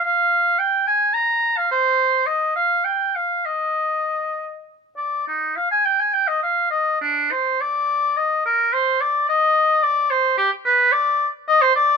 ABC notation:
X:1
M:3/4
L:1/16
Q:1/4=107
K:Eb
V:1 name="Oboe"
f4 g2 a2 b3 f | c4 e2 f2 g2 f2 | e8 z2 d2 | E2 f a g a g e f2 e2 |
D2 c2 d4 e2 B2 | c2 d2 e4 d2 c2 | G2 _c2 d3 z e =c d2 |]